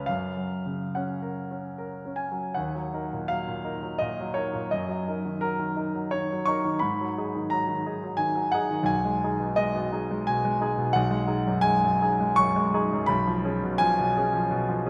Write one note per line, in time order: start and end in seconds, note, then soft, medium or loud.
0.00 0.11 C#2 soft
0.00 0.10 C#3 soft
0.00 0.11 C#4 soft
0.00 0.10 B4 soft
0.00 0.06 F5 medium
0.06 2.52 F#2 soft
0.06 0.92 F5 medium
0.37 0.82 F#3 soft
0.66 1.10 C#3 soft
0.95 1.39 C#4 soft
0.95 2.18 F#5 soft
1.22 1.66 A#4 soft
1.51 1.94 C#4 soft
1.78 2.21 A#4 soft
2.05 2.47 C#4 soft
2.16 2.55 G#5 medium
2.32 2.56 F#3 soft
2.54 4.66 D#2 soft
2.54 3.27 F#5 medium
2.75 3.03 F#3 soft
2.94 3.09 D#4 soft
2.94 3.09 A#4 soft
3.13 3.40 A#2 soft
3.28 3.57 F#3 soft
3.28 3.99 F5 medium
3.47 3.75 A#2 soft
3.65 3.80 D#4 soft
3.65 3.80 A#4 soft
3.83 4.10 F#3 soft
3.99 4.28 A#2 soft
3.99 4.34 D#5 medium
4.21 4.47 F#3 soft
4.34 4.51 D#4 soft
4.34 4.52 A#4 soft
4.34 4.70 C#5 medium
4.54 4.71 A#2 soft
4.71 6.80 F#2 soft
4.71 5.41 D#5 medium
4.89 5.17 F#3 soft
5.08 5.23 D#4 soft
5.08 5.23 A#4 soft
5.25 5.52 D#3 soft
5.41 5.70 F#3 soft
5.41 5.76 A#4 medium
5.59 5.87 D#3 soft
5.77 5.92 D#4 soft
5.77 5.93 A#4 soft
5.95 6.23 F#3 soft
6.11 6.41 D#3 soft
6.11 6.47 C#5 medium
6.32 6.60 F#3 soft
6.46 6.64 D#4 soft
6.46 6.64 A#4 soft
6.46 6.82 C#6 medium
6.65 6.83 D#3 soft
6.79 8.86 G#2 soft
6.79 7.50 B5 medium
7.01 7.28 F#3 soft
7.18 7.33 D#4 soft
7.18 7.33 G#4 soft
7.35 7.62 D#3 soft
7.50 7.80 F#3 soft
7.50 8.19 A#5 medium
7.68 7.96 D#3 soft
7.86 8.02 D#4 soft
7.86 8.02 G#4 soft
8.04 8.31 F#3 soft
8.17 8.47 D#3 soft
8.17 8.53 G#5 medium
8.35 8.65 F#3 soft
8.52 8.71 D#4 soft
8.52 8.70 G#4 soft
8.52 8.88 F#5 medium
8.71 8.89 D#3 soft
8.83 10.90 B1 medium
8.83 9.58 G#5 medium
9.05 9.35 G#3 soft
9.24 9.40 D#4 soft
9.24 9.41 G#4 soft
9.40 9.69 B2 soft
9.56 9.87 G#3 soft
9.56 10.28 D#5 medium
9.75 10.04 B2 soft
9.92 10.09 D#4 soft
9.92 10.10 G#4 soft
10.11 10.39 G#3 soft
10.27 10.57 B2 soft
10.27 10.62 G#5 medium
10.45 10.73 G#3 soft
10.61 10.77 D#4 soft
10.61 10.78 G#4 soft
10.78 10.96 B2 soft
10.93 13.04 B1 medium
10.93 11.64 F#5 medium
11.11 11.40 G#3 soft
11.27 11.44 D#4 soft
11.27 11.45 G#4 soft
11.47 11.76 F#2 soft
11.61 11.94 G#3 soft
11.61 12.38 G#5 loud
11.84 12.14 F#2 soft
12.02 12.19 D#4 soft
12.02 12.20 G#4 soft
12.20 12.50 G#3 soft
12.36 12.68 F#2 soft
12.36 13.08 C#6 loud
12.56 12.85 G#3 soft
12.74 12.90 D#4 soft
12.74 12.90 G#4 medium
12.93 13.10 F#2 soft
13.06 14.90 B1 medium
13.06 13.78 B5 medium
13.27 13.55 F3 soft
13.44 13.60 C#4 soft
13.44 13.60 G#4 soft
13.63 13.91 B2 soft
13.78 14.09 F3 medium
13.78 14.90 G#5 loud
13.99 14.27 B2 soft
14.17 14.32 C#4 soft
14.17 14.33 G#4 soft
14.34 14.62 F3 soft
14.51 14.79 B2 medium
14.69 14.90 F3 soft
14.86 14.90 C#4 soft
14.86 14.90 G#4 soft